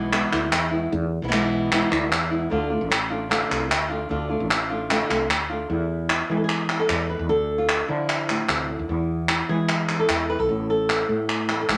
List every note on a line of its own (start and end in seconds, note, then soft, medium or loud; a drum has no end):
0.00 0.23 B1 medium
0.00 0.10 B2 medium
0.00 0.12 E3 medium
0.00 0.12 G#3 medium
0.00 0.12 B3 medium
0.00 0.13 E4 medium
0.12 0.31 B2 medium
0.12 0.32 E3 medium
0.12 0.32 G#3 medium
0.12 0.32 B3 medium
0.12 0.31 E4 medium
0.12 clap medium
0.32 0.52 D2 medium
0.32 0.51 G#3 soft
0.32 0.52 B3 soft
0.32 0.51 E4 medium
0.32 clap medium
0.52 0.87 E2 medium
0.52 muted nylon-string guitar stroke medium
0.52 clap medium
0.71 0.92 G#3 soft
0.71 0.91 B3 medium
0.71 0.91 E4 medium
0.92 1.18 E2 medium
0.92 muted nylon-string guitar stroke medium
1.22 1.82 B1 medium
1.22 1.27 E3 medium
1.22 1.27 G#3 soft
1.22 1.28 B3 medium
1.22 1.28 E4 medium
1.28 1.32 E3 medium
1.28 1.32 G#3 medium
1.28 1.32 B3 medium
1.28 1.33 E4 medium
1.32 1.71 B2 medium
1.32 1.72 E3 medium
1.32 1.72 G#3 medium
1.32 1.72 B3 medium
1.32 1.72 E4 medium
1.32 clap medium
1.72 1.91 B2 medium
1.72 1.91 E3 medium
1.72 1.92 G#3 medium
1.72 1.91 B3 medium
1.72 1.90 E4 medium
1.72 clap medium
1.91 2.12 D2 medium
1.91 2.11 G#3 soft
1.91 2.11 B3 soft
1.91 2.11 E4 medium
1.91 clap medium
2.11 2.46 E2 medium
2.11 muted nylon-string guitar stroke medium
2.11 clap medium
2.31 2.50 G#3 soft
2.31 2.51 B3 medium
2.31 2.50 E4 medium
2.50 2.77 D2 medium
2.50 2.70 D3 medium
2.50 2.70 A3 medium
2.50 2.70 D4 medium
2.50 2.69 F4 medium
2.70 2.89 A3 soft
2.70 2.90 D4 soft
2.70 2.90 F4 soft
2.81 3.41 A1 medium
2.90 muted nylon-string guitar stroke medium
2.90 clap medium
3.10 3.29 A3 soft
3.10 3.30 D4 medium
3.10 3.30 F4 medium
3.29 3.49 D3 medium
3.29 3.50 A3 medium
3.29 3.50 D4 medium
3.29 3.49 F4 medium
3.29 clap medium
3.50 3.71 C2 medium
3.50 3.68 A3 soft
3.50 3.69 D4 soft
3.50 3.70 F4 soft
3.50 clap medium
3.69 4.05 D2 medium
3.69 muted nylon-string guitar stroke medium
3.69 clap medium
3.89 4.09 A3 soft
3.89 4.09 D4 medium
3.89 4.09 F4 medium
4.09 4.37 D2 medium
4.09 4.29 D3 medium
4.09 4.29 A3 medium
4.09 4.29 D4 medium
4.09 4.28 F4 medium
4.29 4.49 A3 soft
4.29 4.49 D4 soft
4.29 4.49 F4 soft
4.40 5.01 A1 medium
4.49 muted nylon-string guitar stroke medium
4.49 clap medium
4.70 4.90 A3 soft
4.70 4.90 D4 medium
4.70 4.89 F4 medium
4.90 5.09 D3 medium
4.90 5.10 A3 medium
4.90 5.09 D4 medium
4.90 5.08 F4 medium
4.90 clap medium
5.09 5.30 C2 medium
5.09 5.29 A3 soft
5.09 5.29 D4 soft
5.09 5.29 F4 medium
5.09 clap medium
5.30 5.64 D2 medium
5.30 muted nylon-string guitar stroke medium
5.30 clap medium
5.49 5.70 A3 soft
5.49 5.69 D4 soft
5.49 5.69 F4 medium
5.70 6.21 E2 medium
5.70 6.68 E2 medium
5.70 7.27 B3 soft
5.70 6.09 E4 soft
6.10 6.30 E4 medium
6.10 clap medium
6.30 6.81 E3 medium
6.30 7.27 G#3 medium
6.30 6.36 G#4 medium
6.37 6.44 A4 medium
6.44 6.79 G#4 medium
6.49 clap medium
6.69 7.29 E2 medium
6.69 7.27 E4 soft
6.69 clap medium
6.79 7.09 A4 medium
6.89 7.15 E2 medium
6.89 clap medium
7.10 7.29 B4 medium
7.19 7.28 E2 medium
7.29 7.81 D2 medium
7.29 8.49 D3 medium
7.29 7.88 A4 loud
7.58 8.29 F4 medium
7.69 clap medium
7.88 8.41 D3 medium
7.88 8.69 F3 medium
7.88 8.89 E4 medium
8.09 clap medium
8.29 8.87 A2 medium
8.29 8.87 D4 soft
8.29 clap medium
8.49 8.75 D2 medium
8.49 8.69 C3 medium
8.49 clap medium
8.70 8.90 D3 medium
8.79 8.88 D#2 medium
8.89 9.41 E2 medium
8.89 9.88 E2 medium
8.89 10.50 B3 soft
8.89 9.30 E4 soft
9.29 9.49 E4 medium
9.29 clap medium
9.49 10.01 E3 medium
9.49 10.47 G#3 medium
9.49 9.99 G#4 medium
9.69 clap medium
9.89 10.49 E2 medium
9.89 10.49 E4 soft
9.89 clap medium
9.99 10.29 A4 medium
10.09 10.35 E2 medium
10.09 clap medium
10.30 10.40 B4 medium
10.39 10.48 B1 medium
10.39 10.69 A4 medium
10.49 11.01 A1 medium
10.49 11.49 A2 medium
10.49 10.89 B3 soft
10.70 11.51 A4 medium
10.89 11.70 B3 soft
10.89 clap medium
11.08 11.61 A2 medium
11.08 11.77 A3 medium
11.29 clap medium
11.48 11.68 E2 medium
11.48 11.61 B4 medium
11.48 clap medium
11.61 11.77 A4 medium
11.68 11.77 A1 medium
11.68 11.77 G#2 medium
11.68 11.77 G#4 medium
11.68 clap medium